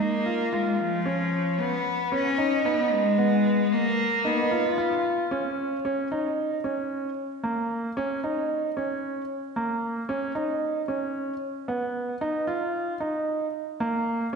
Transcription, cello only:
0, 0, Header, 1, 2, 480
1, 0, Start_track
1, 0, Tempo, 530973
1, 1442, Time_signature, 4, 2, 24, 8
1, 12977, End_track
2, 0, Start_track
2, 0, Title_t, "Cello"
2, 0, Program_c, 0, 42
2, 7, Note_on_c, 0, 58, 98
2, 484, Note_on_c, 0, 56, 84
2, 498, Note_off_c, 0, 58, 0
2, 727, Note_on_c, 0, 53, 101
2, 741, Note_off_c, 0, 56, 0
2, 1439, Note_on_c, 0, 59, 108
2, 1453, Note_off_c, 0, 53, 0
2, 1926, Note_on_c, 0, 61, 110
2, 1939, Note_off_c, 0, 59, 0
2, 2400, Note_on_c, 0, 59, 94
2, 2413, Note_off_c, 0, 61, 0
2, 2642, Note_on_c, 0, 56, 107
2, 2656, Note_off_c, 0, 59, 0
2, 3364, Note_on_c, 0, 58, 107
2, 3377, Note_off_c, 0, 56, 0
2, 3849, Note_on_c, 0, 59, 103
2, 3862, Note_off_c, 0, 58, 0
2, 4325, Note_off_c, 0, 59, 0
2, 12977, End_track
0, 0, End_of_file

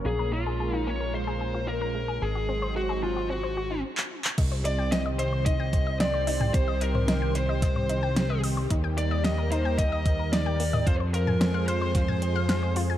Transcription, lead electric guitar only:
0, 0, Header, 1, 2, 480
1, 0, Start_track
1, 0, Tempo, 540541
1, 51, Time_signature, 4, 2, 24, 8
1, 11524, End_track
2, 0, Start_track
2, 0, Title_t, "Lead electric guitar"
2, 0, Program_c, 0, 29
2, 52, Note_on_c, 0, 68, 94
2, 290, Note_off_c, 0, 68, 0
2, 294, Note_on_c, 0, 65, 90
2, 684, Note_off_c, 0, 65, 0
2, 684, Note_on_c, 0, 63, 90
2, 774, Note_on_c, 0, 73, 97
2, 786, Note_off_c, 0, 63, 0
2, 1012, Note_off_c, 0, 73, 0
2, 1016, Note_on_c, 0, 72, 101
2, 1491, Note_off_c, 0, 72, 0
2, 1494, Note_on_c, 0, 70, 98
2, 1973, Note_on_c, 0, 68, 94
2, 1987, Note_off_c, 0, 70, 0
2, 2418, Note_off_c, 0, 68, 0
2, 2452, Note_on_c, 0, 66, 86
2, 2688, Note_off_c, 0, 66, 0
2, 2692, Note_on_c, 0, 65, 82
2, 2914, Note_off_c, 0, 65, 0
2, 2934, Note_on_c, 0, 66, 82
2, 3378, Note_off_c, 0, 66, 0
2, 4130, Note_on_c, 0, 74, 98
2, 4367, Note_off_c, 0, 74, 0
2, 4371, Note_on_c, 0, 75, 113
2, 4435, Note_off_c, 0, 75, 0
2, 4607, Note_on_c, 0, 72, 104
2, 4844, Note_off_c, 0, 72, 0
2, 4848, Note_on_c, 0, 75, 114
2, 5295, Note_off_c, 0, 75, 0
2, 5328, Note_on_c, 0, 74, 105
2, 5804, Note_off_c, 0, 74, 0
2, 5807, Note_on_c, 0, 72, 103
2, 6047, Note_on_c, 0, 70, 92
2, 6056, Note_off_c, 0, 72, 0
2, 6529, Note_on_c, 0, 72, 91
2, 6543, Note_off_c, 0, 70, 0
2, 7454, Note_off_c, 0, 72, 0
2, 7971, Note_on_c, 0, 74, 102
2, 8206, Note_off_c, 0, 74, 0
2, 8210, Note_on_c, 0, 75, 114
2, 8446, Note_off_c, 0, 75, 0
2, 8449, Note_on_c, 0, 72, 103
2, 8688, Note_off_c, 0, 72, 0
2, 8691, Note_on_c, 0, 75, 111
2, 9168, Note_off_c, 0, 75, 0
2, 9172, Note_on_c, 0, 74, 107
2, 9617, Note_off_c, 0, 74, 0
2, 9653, Note_on_c, 0, 72, 101
2, 9717, Note_off_c, 0, 72, 0
2, 9890, Note_on_c, 0, 70, 91
2, 10336, Note_off_c, 0, 70, 0
2, 10372, Note_on_c, 0, 72, 90
2, 11296, Note_off_c, 0, 72, 0
2, 11524, End_track
0, 0, End_of_file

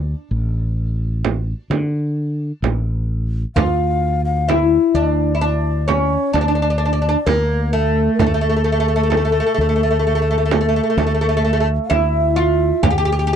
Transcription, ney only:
0, 0, Header, 1, 2, 480
1, 0, Start_track
1, 0, Tempo, 927357
1, 1843, Time_signature, 10, 3, 24, 8
1, 6914, End_track
2, 0, Start_track
2, 0, Title_t, "Ney"
2, 0, Program_c, 0, 77
2, 1841, Note_on_c, 0, 77, 74
2, 2181, Note_off_c, 0, 77, 0
2, 2201, Note_on_c, 0, 77, 65
2, 2322, Note_on_c, 0, 76, 74
2, 2329, Note_off_c, 0, 77, 0
2, 2560, Note_on_c, 0, 74, 67
2, 2568, Note_off_c, 0, 76, 0
2, 2795, Note_off_c, 0, 74, 0
2, 2798, Note_on_c, 0, 74, 72
2, 3040, Note_on_c, 0, 73, 67
2, 3048, Note_off_c, 0, 74, 0
2, 3278, Note_on_c, 0, 74, 73
2, 3286, Note_off_c, 0, 73, 0
2, 3763, Note_on_c, 0, 70, 67
2, 3771, Note_off_c, 0, 74, 0
2, 4010, Note_on_c, 0, 69, 66
2, 4017, Note_off_c, 0, 70, 0
2, 4210, Note_off_c, 0, 69, 0
2, 4216, Note_on_c, 0, 70, 49
2, 4252, Note_on_c, 0, 69, 77
2, 4260, Note_off_c, 0, 70, 0
2, 6025, Note_off_c, 0, 69, 0
2, 6131, Note_on_c, 0, 77, 54
2, 6168, Note_on_c, 0, 76, 85
2, 6175, Note_off_c, 0, 77, 0
2, 6644, Note_on_c, 0, 79, 86
2, 6652, Note_off_c, 0, 76, 0
2, 6914, Note_off_c, 0, 79, 0
2, 6914, End_track
0, 0, End_of_file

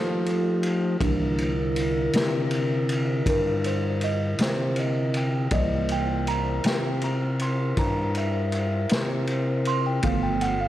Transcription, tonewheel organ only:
0, 0, Header, 1, 2, 480
1, 0, Start_track
1, 0, Tempo, 752823
1, 643, Time_signature, 12, 3, 24, 8
1, 6810, End_track
2, 0, Start_track
2, 0, Title_t, "Tonewheel organ"
2, 0, Program_c, 0, 16
2, 0, Note_on_c, 0, 57, 63
2, 0, Note_on_c, 0, 63, 63
2, 0, Note_on_c, 0, 67, 68
2, 620, Note_off_c, 0, 57, 0
2, 620, Note_off_c, 0, 63, 0
2, 622, Note_off_c, 0, 67, 0
2, 636, Note_on_c, 0, 70, 64
2, 639, Note_on_c, 0, 50, 69
2, 646, Note_on_c, 0, 64, 63
2, 3492, Note_off_c, 0, 70, 0
2, 3493, Note_off_c, 0, 50, 0
2, 3497, Note_off_c, 0, 64, 0
2, 3519, Note_on_c, 0, 64, 71
2, 3522, Note_on_c, 0, 70, 71
2, 3522, Note_on_c, 0, 72, 70
2, 6376, Note_off_c, 0, 64, 0
2, 6377, Note_off_c, 0, 70, 0
2, 6377, Note_off_c, 0, 72, 0
2, 6395, Note_on_c, 0, 69, 64
2, 6398, Note_on_c, 0, 65, 65
2, 6402, Note_on_c, 0, 59, 64
2, 6810, Note_off_c, 0, 59, 0
2, 6810, Note_off_c, 0, 65, 0
2, 6810, Note_off_c, 0, 69, 0
2, 6810, End_track
0, 0, End_of_file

